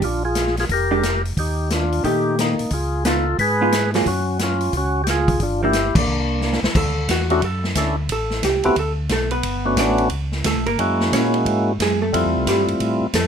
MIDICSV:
0, 0, Header, 1, 5, 480
1, 0, Start_track
1, 0, Tempo, 336323
1, 30, Time_signature, 4, 2, 24, 8
1, 18940, End_track
2, 0, Start_track
2, 0, Title_t, "Hollow-body jazz guitar"
2, 0, Program_c, 0, 26
2, 1300, Note_on_c, 0, 56, 74
2, 1302, Note_on_c, 0, 62, 79
2, 1312, Note_on_c, 0, 67, 83
2, 1456, Note_off_c, 0, 56, 0
2, 1457, Note_off_c, 0, 62, 0
2, 1462, Note_off_c, 0, 67, 0
2, 2910, Note_on_c, 0, 51, 56
2, 2927, Note_on_c, 0, 57, 52
2, 2933, Note_on_c, 0, 67, 66
2, 3637, Note_off_c, 0, 51, 0
2, 3645, Note_off_c, 0, 57, 0
2, 3648, Note_off_c, 0, 67, 0
2, 4355, Note_on_c, 0, 59, 63
2, 4366, Note_on_c, 0, 63, 59
2, 4374, Note_on_c, 0, 65, 56
2, 4630, Note_off_c, 0, 59, 0
2, 4636, Note_off_c, 0, 63, 0
2, 4640, Note_off_c, 0, 65, 0
2, 5155, Note_on_c, 0, 59, 67
2, 5166, Note_on_c, 0, 63, 72
2, 5168, Note_on_c, 0, 65, 74
2, 5305, Note_off_c, 0, 59, 0
2, 5310, Note_off_c, 0, 63, 0
2, 5311, Note_off_c, 0, 65, 0
2, 5637, Note_on_c, 0, 54, 70
2, 5640, Note_on_c, 0, 58, 77
2, 5646, Note_on_c, 0, 68, 72
2, 5649, Note_on_c, 0, 65, 76
2, 5786, Note_off_c, 0, 54, 0
2, 5788, Note_off_c, 0, 58, 0
2, 5791, Note_off_c, 0, 68, 0
2, 5792, Note_off_c, 0, 65, 0
2, 8030, Note_on_c, 0, 53, 64
2, 8043, Note_on_c, 0, 58, 67
2, 8054, Note_on_c, 0, 62, 65
2, 8184, Note_off_c, 0, 53, 0
2, 8190, Note_off_c, 0, 58, 0
2, 8196, Note_off_c, 0, 62, 0
2, 9660, Note_on_c, 0, 69, 55
2, 10096, Note_off_c, 0, 69, 0
2, 10148, Note_on_c, 0, 66, 79
2, 10422, Note_off_c, 0, 66, 0
2, 10439, Note_on_c, 0, 66, 81
2, 10620, Note_off_c, 0, 66, 0
2, 10620, Note_on_c, 0, 69, 65
2, 10906, Note_off_c, 0, 69, 0
2, 11592, Note_on_c, 0, 69, 71
2, 12022, Note_off_c, 0, 69, 0
2, 12056, Note_on_c, 0, 67, 77
2, 12338, Note_off_c, 0, 67, 0
2, 12355, Note_on_c, 0, 67, 82
2, 12519, Note_off_c, 0, 67, 0
2, 12551, Note_on_c, 0, 69, 79
2, 12724, Note_off_c, 0, 69, 0
2, 13024, Note_on_c, 0, 69, 76
2, 13036, Note_on_c, 0, 57, 51
2, 13295, Note_on_c, 0, 71, 90
2, 13297, Note_off_c, 0, 69, 0
2, 13302, Note_on_c, 0, 59, 68
2, 13314, Note_off_c, 0, 57, 0
2, 13906, Note_off_c, 0, 71, 0
2, 13911, Note_off_c, 0, 59, 0
2, 13977, Note_on_c, 0, 74, 107
2, 13985, Note_on_c, 0, 62, 84
2, 14263, Note_off_c, 0, 74, 0
2, 14268, Note_off_c, 0, 62, 0
2, 14932, Note_on_c, 0, 69, 62
2, 14946, Note_on_c, 0, 57, 56
2, 15221, Note_off_c, 0, 69, 0
2, 15222, Note_on_c, 0, 70, 87
2, 15228, Note_off_c, 0, 57, 0
2, 15234, Note_on_c, 0, 58, 71
2, 15830, Note_off_c, 0, 70, 0
2, 15836, Note_off_c, 0, 58, 0
2, 15891, Note_on_c, 0, 73, 95
2, 15900, Note_on_c, 0, 61, 72
2, 16179, Note_off_c, 0, 73, 0
2, 16184, Note_off_c, 0, 61, 0
2, 16872, Note_on_c, 0, 68, 70
2, 16889, Note_on_c, 0, 56, 49
2, 17147, Note_off_c, 0, 56, 0
2, 17150, Note_off_c, 0, 68, 0
2, 17153, Note_on_c, 0, 57, 72
2, 17156, Note_on_c, 0, 69, 82
2, 17753, Note_off_c, 0, 69, 0
2, 17755, Note_off_c, 0, 57, 0
2, 17821, Note_on_c, 0, 67, 81
2, 17829, Note_on_c, 0, 55, 62
2, 17996, Note_off_c, 0, 67, 0
2, 18001, Note_off_c, 0, 55, 0
2, 18773, Note_on_c, 0, 69, 85
2, 18781, Note_on_c, 0, 57, 60
2, 18940, Note_off_c, 0, 57, 0
2, 18940, Note_off_c, 0, 69, 0
2, 18940, End_track
3, 0, Start_track
3, 0, Title_t, "Tonewheel organ"
3, 0, Program_c, 1, 16
3, 56, Note_on_c, 1, 65, 71
3, 71, Note_on_c, 1, 62, 57
3, 329, Note_off_c, 1, 65, 0
3, 336, Note_off_c, 1, 62, 0
3, 355, Note_on_c, 1, 68, 98
3, 358, Note_on_c, 1, 65, 72
3, 793, Note_off_c, 1, 68, 0
3, 795, Note_off_c, 1, 65, 0
3, 855, Note_on_c, 1, 68, 90
3, 864, Note_on_c, 1, 65, 65
3, 925, Note_off_c, 1, 68, 0
3, 932, Note_off_c, 1, 65, 0
3, 1024, Note_on_c, 1, 70, 99
3, 1047, Note_on_c, 1, 67, 73
3, 1740, Note_off_c, 1, 70, 0
3, 1752, Note_off_c, 1, 67, 0
3, 1983, Note_on_c, 1, 67, 74
3, 1994, Note_on_c, 1, 63, 54
3, 2421, Note_off_c, 1, 63, 0
3, 2462, Note_off_c, 1, 67, 0
3, 2472, Note_on_c, 1, 65, 82
3, 2480, Note_on_c, 1, 62, 61
3, 2900, Note_off_c, 1, 65, 0
3, 2905, Note_off_c, 1, 62, 0
3, 2918, Note_on_c, 1, 67, 84
3, 2926, Note_on_c, 1, 63, 68
3, 3367, Note_off_c, 1, 63, 0
3, 3411, Note_off_c, 1, 67, 0
3, 3432, Note_on_c, 1, 63, 95
3, 3437, Note_on_c, 1, 58, 65
3, 3864, Note_off_c, 1, 58, 0
3, 3896, Note_on_c, 1, 68, 73
3, 3902, Note_on_c, 1, 65, 56
3, 3907, Note_off_c, 1, 63, 0
3, 4336, Note_off_c, 1, 65, 0
3, 4379, Note_off_c, 1, 68, 0
3, 4384, Note_on_c, 1, 65, 82
3, 4386, Note_on_c, 1, 69, 96
3, 4817, Note_off_c, 1, 65, 0
3, 4818, Note_off_c, 1, 69, 0
3, 4846, Note_on_c, 1, 71, 103
3, 4865, Note_on_c, 1, 68, 83
3, 5572, Note_off_c, 1, 71, 0
3, 5582, Note_off_c, 1, 68, 0
3, 5816, Note_on_c, 1, 66, 78
3, 5818, Note_on_c, 1, 61, 73
3, 6255, Note_off_c, 1, 61, 0
3, 6300, Note_off_c, 1, 66, 0
3, 6323, Note_on_c, 1, 65, 94
3, 6329, Note_on_c, 1, 61, 70
3, 6751, Note_off_c, 1, 61, 0
3, 6794, Note_off_c, 1, 65, 0
3, 6808, Note_on_c, 1, 66, 91
3, 6814, Note_on_c, 1, 61, 73
3, 7164, Note_off_c, 1, 66, 0
3, 7167, Note_off_c, 1, 61, 0
3, 7192, Note_on_c, 1, 67, 69
3, 7250, Note_off_c, 1, 67, 0
3, 7275, Note_on_c, 1, 65, 74
3, 7289, Note_on_c, 1, 68, 97
3, 7704, Note_off_c, 1, 65, 0
3, 7741, Note_on_c, 1, 62, 60
3, 7751, Note_on_c, 1, 65, 70
3, 7757, Note_off_c, 1, 68, 0
3, 8014, Note_off_c, 1, 62, 0
3, 8020, Note_off_c, 1, 65, 0
3, 8058, Note_on_c, 1, 64, 75
3, 8059, Note_on_c, 1, 67, 111
3, 8489, Note_off_c, 1, 64, 0
3, 8489, Note_off_c, 1, 67, 0
3, 8528, Note_on_c, 1, 58, 60
3, 8540, Note_on_c, 1, 62, 91
3, 9419, Note_off_c, 1, 58, 0
3, 9425, Note_off_c, 1, 62, 0
3, 10423, Note_on_c, 1, 57, 62
3, 10428, Note_on_c, 1, 61, 58
3, 10432, Note_on_c, 1, 64, 60
3, 10433, Note_on_c, 1, 62, 60
3, 10435, Note_on_c, 1, 66, 74
3, 10580, Note_off_c, 1, 57, 0
3, 10583, Note_off_c, 1, 61, 0
3, 10585, Note_off_c, 1, 64, 0
3, 10586, Note_off_c, 1, 62, 0
3, 10587, Note_off_c, 1, 66, 0
3, 11078, Note_on_c, 1, 57, 59
3, 11091, Note_on_c, 1, 61, 53
3, 11097, Note_on_c, 1, 62, 51
3, 11099, Note_on_c, 1, 64, 58
3, 11103, Note_on_c, 1, 69, 66
3, 11353, Note_off_c, 1, 57, 0
3, 11360, Note_off_c, 1, 61, 0
3, 11363, Note_off_c, 1, 62, 0
3, 11364, Note_off_c, 1, 64, 0
3, 11366, Note_off_c, 1, 69, 0
3, 12337, Note_on_c, 1, 57, 69
3, 12346, Note_on_c, 1, 59, 53
3, 12346, Note_on_c, 1, 60, 64
3, 12350, Note_on_c, 1, 66, 65
3, 12353, Note_on_c, 1, 64, 62
3, 12497, Note_off_c, 1, 57, 0
3, 12502, Note_off_c, 1, 59, 0
3, 12502, Note_off_c, 1, 60, 0
3, 12504, Note_off_c, 1, 66, 0
3, 12505, Note_off_c, 1, 64, 0
3, 13775, Note_on_c, 1, 57, 77
3, 13782, Note_on_c, 1, 59, 74
3, 13783, Note_on_c, 1, 61, 67
3, 13787, Note_on_c, 1, 62, 66
3, 13793, Note_on_c, 1, 66, 82
3, 14398, Note_off_c, 1, 57, 0
3, 14401, Note_off_c, 1, 59, 0
3, 14401, Note_off_c, 1, 61, 0
3, 14404, Note_off_c, 1, 62, 0
3, 14407, Note_off_c, 1, 66, 0
3, 15391, Note_on_c, 1, 56, 65
3, 15392, Note_on_c, 1, 58, 58
3, 15404, Note_on_c, 1, 61, 61
3, 15415, Note_on_c, 1, 64, 55
3, 15419, Note_on_c, 1, 66, 73
3, 16727, Note_off_c, 1, 56, 0
3, 16728, Note_off_c, 1, 58, 0
3, 16734, Note_off_c, 1, 61, 0
3, 16739, Note_off_c, 1, 64, 0
3, 16741, Note_off_c, 1, 66, 0
3, 17306, Note_on_c, 1, 55, 65
3, 17316, Note_on_c, 1, 57, 55
3, 17319, Note_on_c, 1, 60, 64
3, 17322, Note_on_c, 1, 64, 60
3, 17327, Note_on_c, 1, 65, 71
3, 18644, Note_off_c, 1, 55, 0
3, 18649, Note_off_c, 1, 57, 0
3, 18651, Note_off_c, 1, 60, 0
3, 18652, Note_off_c, 1, 64, 0
3, 18654, Note_off_c, 1, 65, 0
3, 18940, End_track
4, 0, Start_track
4, 0, Title_t, "Tonewheel organ"
4, 0, Program_c, 2, 16
4, 28, Note_on_c, 2, 34, 76
4, 942, Note_off_c, 2, 34, 0
4, 986, Note_on_c, 2, 29, 83
4, 1902, Note_off_c, 2, 29, 0
4, 1944, Note_on_c, 2, 39, 73
4, 2861, Note_off_c, 2, 39, 0
4, 2912, Note_on_c, 2, 46, 80
4, 3644, Note_off_c, 2, 46, 0
4, 3709, Note_on_c, 2, 46, 34
4, 3794, Note_off_c, 2, 46, 0
4, 3868, Note_on_c, 2, 37, 80
4, 4784, Note_off_c, 2, 37, 0
4, 4827, Note_on_c, 2, 44, 83
4, 5743, Note_off_c, 2, 44, 0
4, 5785, Note_on_c, 2, 42, 81
4, 6703, Note_off_c, 2, 42, 0
4, 6743, Note_on_c, 2, 37, 83
4, 7662, Note_off_c, 2, 37, 0
4, 7697, Note_on_c, 2, 31, 86
4, 8438, Note_off_c, 2, 31, 0
4, 8491, Note_on_c, 2, 34, 75
4, 8659, Note_off_c, 2, 34, 0
4, 8668, Note_on_c, 2, 36, 85
4, 9404, Note_off_c, 2, 36, 0
4, 9451, Note_on_c, 2, 36, 37
4, 9541, Note_off_c, 2, 36, 0
4, 9637, Note_on_c, 2, 38, 75
4, 10103, Note_off_c, 2, 38, 0
4, 10116, Note_on_c, 2, 40, 74
4, 10583, Note_off_c, 2, 40, 0
4, 10591, Note_on_c, 2, 42, 83
4, 11060, Note_off_c, 2, 42, 0
4, 11066, Note_on_c, 2, 38, 76
4, 11537, Note_off_c, 2, 38, 0
4, 11547, Note_on_c, 2, 33, 73
4, 12018, Note_off_c, 2, 33, 0
4, 12021, Note_on_c, 2, 36, 79
4, 12313, Note_off_c, 2, 36, 0
4, 12335, Note_on_c, 2, 36, 38
4, 12424, Note_off_c, 2, 36, 0
4, 12509, Note_on_c, 2, 38, 73
4, 12979, Note_off_c, 2, 38, 0
4, 12980, Note_on_c, 2, 35, 79
4, 13454, Note_off_c, 2, 35, 0
4, 13465, Note_on_c, 2, 31, 65
4, 13933, Note_on_c, 2, 33, 92
4, 13936, Note_off_c, 2, 31, 0
4, 14410, Note_off_c, 2, 33, 0
4, 14415, Note_on_c, 2, 37, 77
4, 14890, Note_off_c, 2, 37, 0
4, 14903, Note_on_c, 2, 38, 77
4, 15064, Note_off_c, 2, 38, 0
4, 15069, Note_on_c, 2, 35, 54
4, 15230, Note_on_c, 2, 31, 65
4, 15232, Note_off_c, 2, 35, 0
4, 15381, Note_off_c, 2, 31, 0
4, 15381, Note_on_c, 2, 42, 68
4, 15853, Note_off_c, 2, 42, 0
4, 15870, Note_on_c, 2, 46, 86
4, 16337, Note_off_c, 2, 46, 0
4, 16342, Note_on_c, 2, 44, 80
4, 16813, Note_off_c, 2, 44, 0
4, 16831, Note_on_c, 2, 42, 77
4, 17297, Note_off_c, 2, 42, 0
4, 17316, Note_on_c, 2, 41, 65
4, 17470, Note_off_c, 2, 41, 0
4, 17484, Note_on_c, 2, 40, 54
4, 17636, Note_on_c, 2, 36, 62
4, 17639, Note_off_c, 2, 40, 0
4, 17783, Note_off_c, 2, 36, 0
4, 17792, Note_on_c, 2, 43, 82
4, 18077, Note_off_c, 2, 43, 0
4, 18102, Note_on_c, 2, 43, 40
4, 18188, Note_off_c, 2, 43, 0
4, 18269, Note_on_c, 2, 45, 85
4, 18553, Note_off_c, 2, 45, 0
4, 18571, Note_on_c, 2, 45, 36
4, 18659, Note_off_c, 2, 45, 0
4, 18745, Note_on_c, 2, 41, 80
4, 18940, Note_off_c, 2, 41, 0
4, 18940, End_track
5, 0, Start_track
5, 0, Title_t, "Drums"
5, 26, Note_on_c, 9, 46, 47
5, 28, Note_on_c, 9, 36, 36
5, 169, Note_off_c, 9, 46, 0
5, 171, Note_off_c, 9, 36, 0
5, 502, Note_on_c, 9, 42, 55
5, 505, Note_on_c, 9, 38, 57
5, 644, Note_off_c, 9, 42, 0
5, 647, Note_off_c, 9, 38, 0
5, 673, Note_on_c, 9, 38, 26
5, 816, Note_off_c, 9, 38, 0
5, 816, Note_on_c, 9, 46, 36
5, 826, Note_on_c, 9, 38, 37
5, 959, Note_off_c, 9, 46, 0
5, 969, Note_off_c, 9, 38, 0
5, 987, Note_on_c, 9, 46, 43
5, 990, Note_on_c, 9, 36, 30
5, 1130, Note_off_c, 9, 46, 0
5, 1133, Note_off_c, 9, 36, 0
5, 1474, Note_on_c, 9, 42, 51
5, 1477, Note_on_c, 9, 38, 60
5, 1617, Note_off_c, 9, 42, 0
5, 1620, Note_off_c, 9, 38, 0
5, 1788, Note_on_c, 9, 46, 36
5, 1931, Note_off_c, 9, 46, 0
5, 1955, Note_on_c, 9, 36, 36
5, 1957, Note_on_c, 9, 46, 50
5, 2097, Note_off_c, 9, 36, 0
5, 2100, Note_off_c, 9, 46, 0
5, 2431, Note_on_c, 9, 42, 48
5, 2434, Note_on_c, 9, 38, 60
5, 2574, Note_off_c, 9, 42, 0
5, 2577, Note_off_c, 9, 38, 0
5, 2746, Note_on_c, 9, 46, 35
5, 2889, Note_off_c, 9, 46, 0
5, 2916, Note_on_c, 9, 36, 28
5, 2916, Note_on_c, 9, 46, 42
5, 3058, Note_off_c, 9, 36, 0
5, 3058, Note_off_c, 9, 46, 0
5, 3405, Note_on_c, 9, 42, 49
5, 3408, Note_on_c, 9, 38, 64
5, 3548, Note_off_c, 9, 42, 0
5, 3550, Note_off_c, 9, 38, 0
5, 3696, Note_on_c, 9, 46, 35
5, 3839, Note_off_c, 9, 46, 0
5, 3860, Note_on_c, 9, 46, 49
5, 3870, Note_on_c, 9, 36, 37
5, 4003, Note_off_c, 9, 46, 0
5, 4012, Note_off_c, 9, 36, 0
5, 4350, Note_on_c, 9, 42, 50
5, 4353, Note_on_c, 9, 38, 65
5, 4493, Note_off_c, 9, 42, 0
5, 4496, Note_off_c, 9, 38, 0
5, 4834, Note_on_c, 9, 36, 26
5, 4836, Note_on_c, 9, 46, 42
5, 4977, Note_off_c, 9, 36, 0
5, 4979, Note_off_c, 9, 46, 0
5, 5313, Note_on_c, 9, 42, 54
5, 5316, Note_on_c, 9, 38, 72
5, 5456, Note_off_c, 9, 42, 0
5, 5459, Note_off_c, 9, 38, 0
5, 5620, Note_on_c, 9, 46, 37
5, 5623, Note_on_c, 9, 38, 55
5, 5763, Note_off_c, 9, 46, 0
5, 5766, Note_off_c, 9, 38, 0
5, 5797, Note_on_c, 9, 36, 32
5, 5797, Note_on_c, 9, 46, 53
5, 5939, Note_off_c, 9, 36, 0
5, 5940, Note_off_c, 9, 46, 0
5, 6270, Note_on_c, 9, 42, 48
5, 6272, Note_on_c, 9, 38, 62
5, 6412, Note_off_c, 9, 42, 0
5, 6415, Note_off_c, 9, 38, 0
5, 6573, Note_on_c, 9, 46, 36
5, 6716, Note_off_c, 9, 46, 0
5, 6748, Note_on_c, 9, 46, 39
5, 6752, Note_on_c, 9, 36, 31
5, 6891, Note_off_c, 9, 46, 0
5, 6895, Note_off_c, 9, 36, 0
5, 7231, Note_on_c, 9, 42, 55
5, 7233, Note_on_c, 9, 38, 61
5, 7373, Note_off_c, 9, 42, 0
5, 7376, Note_off_c, 9, 38, 0
5, 7536, Note_on_c, 9, 36, 60
5, 7536, Note_on_c, 9, 46, 38
5, 7678, Note_off_c, 9, 46, 0
5, 7679, Note_off_c, 9, 36, 0
5, 7702, Note_on_c, 9, 46, 47
5, 7707, Note_on_c, 9, 36, 34
5, 7845, Note_off_c, 9, 46, 0
5, 7849, Note_off_c, 9, 36, 0
5, 8180, Note_on_c, 9, 42, 50
5, 8183, Note_on_c, 9, 38, 59
5, 8323, Note_off_c, 9, 42, 0
5, 8326, Note_off_c, 9, 38, 0
5, 8496, Note_on_c, 9, 36, 84
5, 8499, Note_on_c, 9, 49, 73
5, 8639, Note_off_c, 9, 36, 0
5, 8642, Note_off_c, 9, 49, 0
5, 9152, Note_on_c, 9, 38, 47
5, 9294, Note_off_c, 9, 38, 0
5, 9313, Note_on_c, 9, 38, 58
5, 9456, Note_off_c, 9, 38, 0
5, 9474, Note_on_c, 9, 38, 82
5, 9617, Note_off_c, 9, 38, 0
5, 9635, Note_on_c, 9, 36, 75
5, 9637, Note_on_c, 9, 49, 74
5, 9777, Note_off_c, 9, 36, 0
5, 9780, Note_off_c, 9, 49, 0
5, 10113, Note_on_c, 9, 44, 48
5, 10113, Note_on_c, 9, 51, 65
5, 10115, Note_on_c, 9, 36, 21
5, 10116, Note_on_c, 9, 38, 67
5, 10256, Note_off_c, 9, 44, 0
5, 10256, Note_off_c, 9, 51, 0
5, 10258, Note_off_c, 9, 36, 0
5, 10258, Note_off_c, 9, 38, 0
5, 10419, Note_on_c, 9, 51, 38
5, 10561, Note_off_c, 9, 51, 0
5, 10589, Note_on_c, 9, 51, 49
5, 10594, Note_on_c, 9, 36, 23
5, 10731, Note_off_c, 9, 51, 0
5, 10736, Note_off_c, 9, 36, 0
5, 10903, Note_on_c, 9, 38, 50
5, 11045, Note_off_c, 9, 38, 0
5, 11066, Note_on_c, 9, 44, 58
5, 11066, Note_on_c, 9, 51, 57
5, 11069, Note_on_c, 9, 38, 63
5, 11072, Note_on_c, 9, 36, 23
5, 11209, Note_off_c, 9, 44, 0
5, 11209, Note_off_c, 9, 51, 0
5, 11211, Note_off_c, 9, 38, 0
5, 11215, Note_off_c, 9, 36, 0
5, 11546, Note_on_c, 9, 51, 64
5, 11550, Note_on_c, 9, 36, 25
5, 11689, Note_off_c, 9, 51, 0
5, 11693, Note_off_c, 9, 36, 0
5, 11852, Note_on_c, 9, 38, 41
5, 11994, Note_off_c, 9, 38, 0
5, 12029, Note_on_c, 9, 44, 50
5, 12029, Note_on_c, 9, 51, 62
5, 12031, Note_on_c, 9, 36, 26
5, 12032, Note_on_c, 9, 38, 60
5, 12172, Note_off_c, 9, 44, 0
5, 12172, Note_off_c, 9, 51, 0
5, 12174, Note_off_c, 9, 36, 0
5, 12175, Note_off_c, 9, 38, 0
5, 12324, Note_on_c, 9, 51, 41
5, 12467, Note_off_c, 9, 51, 0
5, 12503, Note_on_c, 9, 51, 51
5, 12508, Note_on_c, 9, 36, 17
5, 12645, Note_off_c, 9, 51, 0
5, 12651, Note_off_c, 9, 36, 0
5, 12978, Note_on_c, 9, 44, 49
5, 12978, Note_on_c, 9, 51, 57
5, 12981, Note_on_c, 9, 38, 66
5, 12985, Note_on_c, 9, 36, 17
5, 13121, Note_off_c, 9, 44, 0
5, 13121, Note_off_c, 9, 51, 0
5, 13123, Note_off_c, 9, 38, 0
5, 13127, Note_off_c, 9, 36, 0
5, 13282, Note_on_c, 9, 51, 41
5, 13425, Note_off_c, 9, 51, 0
5, 13461, Note_on_c, 9, 51, 66
5, 13465, Note_on_c, 9, 36, 21
5, 13604, Note_off_c, 9, 51, 0
5, 13608, Note_off_c, 9, 36, 0
5, 13941, Note_on_c, 9, 44, 53
5, 13941, Note_on_c, 9, 51, 63
5, 13944, Note_on_c, 9, 36, 17
5, 13944, Note_on_c, 9, 38, 60
5, 14084, Note_off_c, 9, 44, 0
5, 14084, Note_off_c, 9, 51, 0
5, 14086, Note_off_c, 9, 36, 0
5, 14087, Note_off_c, 9, 38, 0
5, 14246, Note_on_c, 9, 51, 40
5, 14389, Note_off_c, 9, 51, 0
5, 14408, Note_on_c, 9, 51, 53
5, 14419, Note_on_c, 9, 36, 16
5, 14551, Note_off_c, 9, 51, 0
5, 14562, Note_off_c, 9, 36, 0
5, 14725, Note_on_c, 9, 38, 35
5, 14868, Note_off_c, 9, 38, 0
5, 14903, Note_on_c, 9, 44, 51
5, 14903, Note_on_c, 9, 51, 72
5, 14906, Note_on_c, 9, 36, 17
5, 14906, Note_on_c, 9, 38, 66
5, 15046, Note_off_c, 9, 44, 0
5, 15046, Note_off_c, 9, 51, 0
5, 15048, Note_off_c, 9, 36, 0
5, 15049, Note_off_c, 9, 38, 0
5, 15219, Note_on_c, 9, 51, 39
5, 15362, Note_off_c, 9, 51, 0
5, 15389, Note_on_c, 9, 36, 19
5, 15396, Note_on_c, 9, 51, 57
5, 15532, Note_off_c, 9, 36, 0
5, 15539, Note_off_c, 9, 51, 0
5, 15704, Note_on_c, 9, 38, 54
5, 15847, Note_off_c, 9, 38, 0
5, 15873, Note_on_c, 9, 36, 21
5, 15883, Note_on_c, 9, 44, 52
5, 15883, Note_on_c, 9, 51, 68
5, 15886, Note_on_c, 9, 38, 65
5, 16016, Note_off_c, 9, 36, 0
5, 16026, Note_off_c, 9, 44, 0
5, 16026, Note_off_c, 9, 51, 0
5, 16029, Note_off_c, 9, 38, 0
5, 16181, Note_on_c, 9, 51, 40
5, 16324, Note_off_c, 9, 51, 0
5, 16353, Note_on_c, 9, 36, 24
5, 16357, Note_on_c, 9, 51, 52
5, 16495, Note_off_c, 9, 36, 0
5, 16500, Note_off_c, 9, 51, 0
5, 16835, Note_on_c, 9, 36, 19
5, 16840, Note_on_c, 9, 44, 55
5, 16840, Note_on_c, 9, 51, 65
5, 16843, Note_on_c, 9, 38, 62
5, 16978, Note_off_c, 9, 36, 0
5, 16983, Note_off_c, 9, 44, 0
5, 16983, Note_off_c, 9, 51, 0
5, 16986, Note_off_c, 9, 38, 0
5, 17318, Note_on_c, 9, 36, 28
5, 17326, Note_on_c, 9, 51, 62
5, 17461, Note_off_c, 9, 36, 0
5, 17468, Note_off_c, 9, 51, 0
5, 17793, Note_on_c, 9, 36, 23
5, 17798, Note_on_c, 9, 44, 49
5, 17798, Note_on_c, 9, 51, 65
5, 17800, Note_on_c, 9, 38, 62
5, 17936, Note_off_c, 9, 36, 0
5, 17940, Note_off_c, 9, 44, 0
5, 17940, Note_off_c, 9, 51, 0
5, 17943, Note_off_c, 9, 38, 0
5, 18103, Note_on_c, 9, 51, 41
5, 18245, Note_off_c, 9, 51, 0
5, 18271, Note_on_c, 9, 51, 53
5, 18272, Note_on_c, 9, 36, 17
5, 18413, Note_off_c, 9, 51, 0
5, 18414, Note_off_c, 9, 36, 0
5, 18746, Note_on_c, 9, 36, 19
5, 18746, Note_on_c, 9, 44, 61
5, 18746, Note_on_c, 9, 51, 66
5, 18749, Note_on_c, 9, 38, 71
5, 18889, Note_off_c, 9, 36, 0
5, 18889, Note_off_c, 9, 44, 0
5, 18889, Note_off_c, 9, 51, 0
5, 18892, Note_off_c, 9, 38, 0
5, 18940, End_track
0, 0, End_of_file